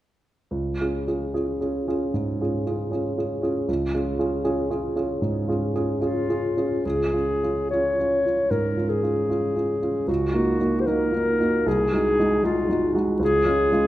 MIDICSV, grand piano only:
0, 0, Header, 1, 2, 480
1, 0, Start_track
1, 0, Key_signature, -5, "major"
1, 0, Tempo, 814111
1, 308, Time_signature, 4, 2, 24, 8
1, 1262, Tempo, 772201
1, 3662, Tempo, 855920
1, 4622, Tempo, 789474
1, 7022, Tempo, 773196
1, 8394, End_track
2, 0, Start_track
2, 0, Title_t, "Grand piano"
2, 0, Program_c, 0, 0
2, 300, Note_on_c, 0, 37, 30
2, 428, Control_c, 0, 64, 127
2, 462, Note_off_c, 0, 37, 0
2, 474, Note_on_c, 0, 61, 21
2, 476, Note_on_c, 0, 65, 21
2, 479, Note_on_c, 0, 68, 23
2, 618, Note_off_c, 0, 61, 0
2, 620, Note_off_c, 0, 65, 0
2, 621, Note_off_c, 0, 68, 0
2, 633, Note_on_c, 0, 61, 22
2, 634, Note_on_c, 0, 65, 21
2, 637, Note_on_c, 0, 68, 23
2, 776, Note_off_c, 0, 61, 0
2, 777, Note_off_c, 0, 65, 0
2, 779, Note_off_c, 0, 68, 0
2, 789, Note_on_c, 0, 61, 23
2, 790, Note_on_c, 0, 65, 23
2, 792, Note_on_c, 0, 68, 25
2, 932, Note_off_c, 0, 61, 0
2, 933, Note_off_c, 0, 65, 0
2, 934, Note_off_c, 0, 68, 0
2, 948, Note_on_c, 0, 61, 23
2, 950, Note_on_c, 0, 68, 24
2, 951, Note_on_c, 0, 65, 21
2, 1090, Note_off_c, 0, 61, 0
2, 1091, Note_off_c, 0, 68, 0
2, 1092, Note_off_c, 0, 65, 0
2, 1104, Note_on_c, 0, 61, 23
2, 1108, Note_on_c, 0, 65, 23
2, 1109, Note_on_c, 0, 68, 24
2, 1245, Note_off_c, 0, 61, 0
2, 1247, Note_off_c, 0, 65, 0
2, 1248, Note_off_c, 0, 68, 0
2, 1260, Note_on_c, 0, 44, 25
2, 1418, Note_off_c, 0, 44, 0
2, 1427, Note_on_c, 0, 61, 23
2, 1431, Note_on_c, 0, 65, 23
2, 1433, Note_on_c, 0, 68, 26
2, 1569, Note_off_c, 0, 61, 0
2, 1571, Note_off_c, 0, 65, 0
2, 1572, Note_off_c, 0, 68, 0
2, 1588, Note_on_c, 0, 61, 21
2, 1588, Note_on_c, 0, 65, 24
2, 1592, Note_on_c, 0, 68, 24
2, 1727, Note_off_c, 0, 61, 0
2, 1727, Note_off_c, 0, 65, 0
2, 1730, Note_off_c, 0, 68, 0
2, 1740, Note_on_c, 0, 61, 25
2, 1745, Note_on_c, 0, 68, 24
2, 1747, Note_on_c, 0, 65, 23
2, 1882, Note_off_c, 0, 61, 0
2, 1885, Note_off_c, 0, 68, 0
2, 1886, Note_off_c, 0, 65, 0
2, 1903, Note_on_c, 0, 61, 23
2, 1906, Note_on_c, 0, 65, 23
2, 1911, Note_on_c, 0, 68, 26
2, 2044, Note_off_c, 0, 61, 0
2, 2046, Note_off_c, 0, 65, 0
2, 2049, Note_off_c, 0, 68, 0
2, 2055, Note_on_c, 0, 61, 28
2, 2062, Note_on_c, 0, 65, 26
2, 2064, Note_on_c, 0, 68, 28
2, 2200, Note_off_c, 0, 61, 0
2, 2204, Note_off_c, 0, 65, 0
2, 2205, Note_off_c, 0, 68, 0
2, 2220, Note_on_c, 0, 37, 36
2, 2229, Control_c, 0, 64, 0
2, 2318, Control_c, 0, 64, 127
2, 2373, Note_off_c, 0, 37, 0
2, 2381, Note_on_c, 0, 61, 27
2, 2385, Note_on_c, 0, 65, 25
2, 2385, Note_on_c, 0, 68, 28
2, 2520, Note_off_c, 0, 61, 0
2, 2522, Note_off_c, 0, 68, 0
2, 2523, Note_off_c, 0, 65, 0
2, 2535, Note_on_c, 0, 65, 29
2, 2537, Note_on_c, 0, 61, 29
2, 2539, Note_on_c, 0, 68, 32
2, 2676, Note_off_c, 0, 61, 0
2, 2676, Note_off_c, 0, 65, 0
2, 2678, Note_off_c, 0, 68, 0
2, 2691, Note_on_c, 0, 61, 32
2, 2695, Note_on_c, 0, 65, 29
2, 2696, Note_on_c, 0, 68, 36
2, 2833, Note_off_c, 0, 61, 0
2, 2835, Note_off_c, 0, 65, 0
2, 2835, Note_off_c, 0, 68, 0
2, 2852, Note_on_c, 0, 61, 29
2, 2853, Note_on_c, 0, 65, 29
2, 2858, Note_on_c, 0, 68, 30
2, 2994, Note_off_c, 0, 61, 0
2, 2995, Note_off_c, 0, 65, 0
2, 2997, Note_off_c, 0, 68, 0
2, 3013, Note_on_c, 0, 61, 29
2, 3015, Note_on_c, 0, 65, 28
2, 3018, Note_on_c, 0, 68, 30
2, 3155, Note_off_c, 0, 61, 0
2, 3157, Note_off_c, 0, 65, 0
2, 3158, Note_off_c, 0, 68, 0
2, 3175, Note_on_c, 0, 44, 33
2, 3329, Note_off_c, 0, 44, 0
2, 3338, Note_on_c, 0, 61, 28
2, 3340, Note_on_c, 0, 65, 26
2, 3345, Note_on_c, 0, 68, 30
2, 3483, Note_off_c, 0, 61, 0
2, 3484, Note_off_c, 0, 65, 0
2, 3487, Note_off_c, 0, 68, 0
2, 3507, Note_on_c, 0, 61, 26
2, 3509, Note_on_c, 0, 65, 28
2, 3509, Note_on_c, 0, 68, 32
2, 3652, Note_off_c, 0, 61, 0
2, 3653, Note_off_c, 0, 65, 0
2, 3653, Note_off_c, 0, 68, 0
2, 3666, Note_on_c, 0, 61, 27
2, 3669, Note_on_c, 0, 65, 28
2, 3674, Note_on_c, 0, 68, 30
2, 3803, Note_off_c, 0, 61, 0
2, 3804, Note_off_c, 0, 65, 0
2, 3807, Note_off_c, 0, 68, 0
2, 3823, Note_on_c, 0, 61, 28
2, 3825, Note_on_c, 0, 65, 26
2, 3828, Note_on_c, 0, 68, 28
2, 3962, Note_off_c, 0, 61, 0
2, 3963, Note_off_c, 0, 65, 0
2, 3965, Note_off_c, 0, 68, 0
2, 3981, Note_on_c, 0, 61, 25
2, 3984, Note_on_c, 0, 65, 24
2, 3986, Note_on_c, 0, 68, 26
2, 4120, Note_off_c, 0, 61, 0
2, 4121, Note_off_c, 0, 65, 0
2, 4122, Note_off_c, 0, 68, 0
2, 4140, Note_on_c, 0, 37, 32
2, 4144, Control_c, 0, 64, 0
2, 4225, Control_c, 0, 64, 127
2, 4292, Note_off_c, 0, 37, 0
2, 4297, Note_on_c, 0, 61, 23
2, 4297, Note_on_c, 0, 65, 25
2, 4446, Note_off_c, 0, 61, 0
2, 4446, Note_off_c, 0, 65, 0
2, 4464, Note_on_c, 0, 61, 23
2, 4466, Note_on_c, 0, 65, 26
2, 4608, Note_off_c, 0, 61, 0
2, 4609, Note_off_c, 0, 65, 0
2, 4627, Note_on_c, 0, 61, 23
2, 4630, Note_on_c, 0, 65, 26
2, 4774, Note_off_c, 0, 61, 0
2, 4776, Note_off_c, 0, 65, 0
2, 4795, Note_on_c, 0, 61, 22
2, 4798, Note_on_c, 0, 65, 23
2, 4934, Note_off_c, 0, 61, 0
2, 4936, Note_off_c, 0, 65, 0
2, 4949, Note_on_c, 0, 61, 23
2, 4952, Note_on_c, 0, 65, 25
2, 5090, Note_off_c, 0, 61, 0
2, 5091, Note_off_c, 0, 65, 0
2, 5104, Note_on_c, 0, 44, 28
2, 5257, Note_off_c, 0, 44, 0
2, 5263, Note_on_c, 0, 61, 21
2, 5263, Note_on_c, 0, 65, 22
2, 5406, Note_off_c, 0, 61, 0
2, 5407, Note_off_c, 0, 65, 0
2, 5419, Note_on_c, 0, 61, 23
2, 5423, Note_on_c, 0, 65, 24
2, 5565, Note_off_c, 0, 61, 0
2, 5567, Note_off_c, 0, 65, 0
2, 5582, Note_on_c, 0, 61, 23
2, 5585, Note_on_c, 0, 65, 26
2, 5727, Note_off_c, 0, 61, 0
2, 5729, Note_off_c, 0, 65, 0
2, 5741, Note_on_c, 0, 61, 24
2, 5745, Note_on_c, 0, 65, 26
2, 5886, Note_off_c, 0, 61, 0
2, 5888, Note_off_c, 0, 65, 0
2, 5902, Note_on_c, 0, 61, 24
2, 5907, Note_on_c, 0, 65, 26
2, 6046, Note_off_c, 0, 61, 0
2, 6048, Note_off_c, 0, 65, 0
2, 6058, Note_on_c, 0, 37, 38
2, 6074, Control_c, 0, 64, 0
2, 6162, Control_c, 0, 64, 127
2, 6213, Note_off_c, 0, 37, 0
2, 6216, Note_on_c, 0, 58, 26
2, 6219, Note_on_c, 0, 63, 23
2, 6220, Note_on_c, 0, 66, 28
2, 6359, Note_off_c, 0, 58, 0
2, 6360, Note_off_c, 0, 63, 0
2, 6361, Note_off_c, 0, 66, 0
2, 6381, Note_on_c, 0, 58, 28
2, 6381, Note_on_c, 0, 63, 26
2, 6385, Note_on_c, 0, 66, 28
2, 6521, Note_off_c, 0, 58, 0
2, 6522, Note_off_c, 0, 63, 0
2, 6523, Note_off_c, 0, 66, 0
2, 6542, Note_on_c, 0, 58, 28
2, 6546, Note_on_c, 0, 63, 27
2, 6550, Note_on_c, 0, 66, 29
2, 6683, Note_off_c, 0, 58, 0
2, 6685, Note_off_c, 0, 63, 0
2, 6688, Note_off_c, 0, 66, 0
2, 6695, Note_on_c, 0, 58, 27
2, 6698, Note_on_c, 0, 63, 24
2, 6704, Note_on_c, 0, 66, 26
2, 6842, Note_off_c, 0, 58, 0
2, 6843, Note_off_c, 0, 63, 0
2, 6847, Note_off_c, 0, 66, 0
2, 6863, Note_on_c, 0, 58, 26
2, 6864, Note_on_c, 0, 66, 30
2, 6865, Note_on_c, 0, 63, 26
2, 7008, Note_off_c, 0, 58, 0
2, 7008, Note_off_c, 0, 63, 0
2, 7008, Note_off_c, 0, 66, 0
2, 7021, Note_on_c, 0, 36, 37
2, 7032, Control_c, 0, 64, 0
2, 7143, Control_c, 0, 64, 127
2, 7181, Note_off_c, 0, 36, 0
2, 7189, Note_on_c, 0, 56, 26
2, 7191, Note_on_c, 0, 63, 29
2, 7195, Note_on_c, 0, 66, 27
2, 7333, Note_off_c, 0, 56, 0
2, 7334, Note_off_c, 0, 63, 0
2, 7336, Note_off_c, 0, 66, 0
2, 7353, Note_on_c, 0, 63, 29
2, 7354, Note_on_c, 0, 56, 26
2, 7359, Note_on_c, 0, 66, 30
2, 7493, Note_off_c, 0, 56, 0
2, 7494, Note_off_c, 0, 63, 0
2, 7497, Note_off_c, 0, 66, 0
2, 7503, Note_on_c, 0, 56, 28
2, 7504, Note_on_c, 0, 63, 28
2, 7509, Note_on_c, 0, 66, 29
2, 7647, Note_off_c, 0, 56, 0
2, 7648, Note_off_c, 0, 63, 0
2, 7650, Note_off_c, 0, 66, 0
2, 7662, Note_on_c, 0, 63, 29
2, 7663, Note_on_c, 0, 56, 28
2, 7670, Note_on_c, 0, 66, 32
2, 7806, Note_off_c, 0, 63, 0
2, 7807, Note_off_c, 0, 56, 0
2, 7810, Note_off_c, 0, 66, 0
2, 7821, Note_on_c, 0, 63, 29
2, 7822, Note_on_c, 0, 56, 31
2, 7825, Note_on_c, 0, 66, 33
2, 7965, Note_off_c, 0, 56, 0
2, 7965, Note_off_c, 0, 63, 0
2, 7967, Note_off_c, 0, 66, 0
2, 7973, Note_on_c, 0, 37, 42
2, 7993, Control_c, 0, 64, 0
2, 8102, Control_c, 0, 64, 127
2, 8132, Note_off_c, 0, 37, 0
2, 8135, Note_on_c, 0, 61, 29
2, 8136, Note_on_c, 0, 56, 28
2, 8138, Note_on_c, 0, 65, 31
2, 8281, Note_off_c, 0, 61, 0
2, 8282, Note_off_c, 0, 56, 0
2, 8283, Note_off_c, 0, 65, 0
2, 8301, Note_on_c, 0, 56, 30
2, 8304, Note_on_c, 0, 61, 30
2, 8305, Note_on_c, 0, 65, 33
2, 8394, Note_off_c, 0, 56, 0
2, 8394, Note_off_c, 0, 61, 0
2, 8394, Note_off_c, 0, 65, 0
2, 8394, End_track
0, 0, End_of_file